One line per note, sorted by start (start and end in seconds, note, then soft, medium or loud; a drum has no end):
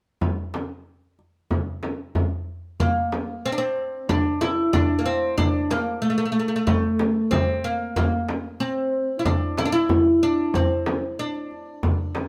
0.21 darbuka dum medium
0.21 frame drum medium
0.37 darbuka ka soft
0.54 darbuka tek medium
0.54 frame drum medium
1.19 darbuka ka soft
1.51 darbuka dum medium
1.51 frame drum medium
1.83 darbuka tek medium
1.83 frame drum medium
2.15 darbuka dum medium
2.15 frame drum medium
2.80 3.47 A#3 medium
2.80 darbuka dum medium
2.80 frame drum medium
3.12 darbuka tek medium
3.12 frame drum medium
3.46 3.52 C4 medium
3.52 3.59 D4 medium
3.58 4.10 C4 medium
3.77 darbuka ka soft
4.09 4.41 D4 medium
4.09 frame drum medium
4.09 darbuka dum medium
4.41 4.73 E4 medium
4.41 darbuka tek medium
4.41 frame drum medium
4.73 5.00 D4 medium
4.73 frame drum medium
4.73 darbuka dum loud
4.90 darbuka ka soft
4.99 5.06 A#3 medium
5.06 5.37 C4 medium
5.38 5.71 D4 medium
5.38 darbuka dum medium
5.38 frame drum medium
5.71 6.01 A#3 medium
5.71 darbuka tek medium
5.71 frame drum medium
6.02 6.09 A3 medium
6.10 6.17 A3 medium
6.18 6.24 A3 medium
6.25 6.31 A3 medium
6.32 6.38 A3 medium
6.32 darbuka ka soft
6.39 6.47 A3 soft
6.48 6.55 A3 medium
6.56 6.63 A3 medium
6.67 7.34 A3 medium
6.67 darbuka dum medium
6.67 frame drum medium
6.99 darbuka tek medium
6.99 frame drum medium
7.31 7.65 C4 medium
7.31 darbuka dum medium
7.31 frame drum medium
7.49 darbuka ka soft
7.64 7.95 A#3 medium
7.96 8.60 A#3 medium
7.96 darbuka dum medium
7.96 frame drum medium
8.29 darbuka tek medium
8.29 frame drum medium
8.60 9.20 C4 medium
8.93 darbuka ka soft
9.19 9.25 E4 medium
9.25 9.58 D4 medium
9.25 darbuka dum medium
9.25 frame drum medium
9.58 9.65 E4 medium
9.58 darbuka tek medium
9.58 frame drum medium
9.66 9.72 D4 medium
9.72 10.22 E4 medium
9.89 darbuka dum medium
9.89 frame drum medium
10.06 darbuka ka soft
10.23 10.53 D4 medium
10.54 11.21 C4 medium
10.54 frame drum medium
10.54 darbuka dum medium
10.86 darbuka tek medium
10.86 frame drum medium
11.19 12.28 D4 medium
11.35 darbuka ka soft
11.51 darbuka ka soft
11.83 frame drum medium
11.83 darbuka dum medium
12.15 darbuka tek medium
12.15 frame drum medium